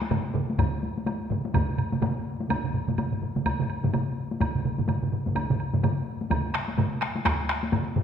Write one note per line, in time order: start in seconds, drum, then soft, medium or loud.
0.02 taiko high medium
0.11 taiko low-mid loud
0.11 taiko mid medium
0.11 taiko high medium
0.11 high woodblock soft
0.34 taiko low-mid medium
0.34 taiko mid loud
0.50 taiko high medium
0.58 taiko loud
0.58 taiko low-mid loud
0.58 taiko mid medium
0.58 taiko high medium
0.58 high woodblock soft
0.83 taiko high soft
0.98 taiko high medium
1.06 taiko high medium
1.06 high woodblock soft
1.30 taiko low-mid loud
1.30 taiko mid medium
1.45 taiko high medium
1.54 taiko loud
1.54 taiko low-mid loud
1.54 taiko mid loud
1.54 taiko high medium
1.54 high woodblock medium
1.78 taiko low-mid medium
1.78 taiko mid medium
1.78 high woodblock soft
1.92 taiko low-mid medium
1.92 taiko mid medium
1.92 taiko high medium
2.02 taiko low-mid medium
2.02 taiko mid loud
2.02 taiko high medium
2.02 high woodblock soft
2.40 taiko high medium
2.50 taiko medium
2.50 taiko low-mid medium
2.50 taiko mid medium
2.50 taiko high medium
2.50 high woodblock medium
2.64 taiko low-mid medium
2.64 taiko mid medium
2.73 taiko low-mid medium
2.73 taiko mid medium
2.88 taiko low-mid medium
2.88 taiko mid medium
2.88 taiko high medium
2.98 taiko low-mid medium
2.98 taiko mid medium
2.98 taiko high medium
2.98 high woodblock soft
3.12 taiko low-mid medium
3.12 taiko mid medium
3.21 taiko low-mid medium
3.21 taiko mid medium
3.36 taiko low-mid medium
3.36 taiko mid medium
3.36 taiko high medium
3.46 taiko medium
3.46 taiko high medium
3.46 high woodblock medium
3.60 taiko low-mid loud
3.60 taiko mid medium
3.70 high woodblock soft
3.84 taiko low-mid loud
3.84 taiko mid medium
3.84 taiko high medium
3.94 taiko low-mid loud
3.94 taiko mid loud
3.94 taiko high medium
3.94 high woodblock soft
4.31 taiko high medium
4.40 taiko loud
4.40 taiko low-mid medium
4.40 taiko mid medium
4.40 taiko high medium
4.40 high woodblock medium
4.55 taiko low-mid medium
4.55 taiko mid medium
4.65 taiko low-mid medium
4.65 taiko mid medium
4.78 taiko low-mid medium
4.78 taiko mid medium
4.78 taiko high medium
4.88 taiko low-mid medium
4.88 taiko mid medium
4.88 taiko high medium
4.88 high woodblock soft
5.03 taiko low-mid medium
5.03 taiko mid medium
5.12 taiko low-mid medium
5.12 taiko mid medium
5.26 taiko low-mid medium
5.26 taiko mid medium
5.26 taiko high medium
5.35 taiko loud
5.35 taiko high medium
5.35 high woodblock medium
5.50 taiko low-mid medium
5.50 taiko mid medium
5.60 high woodblock soft
5.73 taiko low-mid loud
5.73 taiko mid medium
5.73 taiko high medium
5.83 taiko low-mid medium
5.83 taiko mid loud
5.83 taiko high medium
5.83 high woodblock soft
6.21 taiko high medium
6.30 taiko medium
6.30 taiko low-mid loud
6.30 taiko mid loud
6.30 taiko high medium
6.30 high woodblock medium
6.54 taiko rim medium
6.68 taiko high medium
6.78 taiko low-mid loud
6.78 taiko mid medium
6.78 taiko high medium
6.78 high woodblock soft
7.02 taiko rim medium
7.16 taiko high medium
7.25 taiko rim medium
7.25 taiko loud
7.25 taiko high medium
7.25 high woodblock medium
7.49 taiko rim medium
7.49 high woodblock soft
7.63 taiko high medium
7.72 taiko low-mid loud
7.72 taiko mid loud
7.72 taiko high medium
7.72 high woodblock soft
7.96 taiko low-mid loud
7.96 taiko mid loud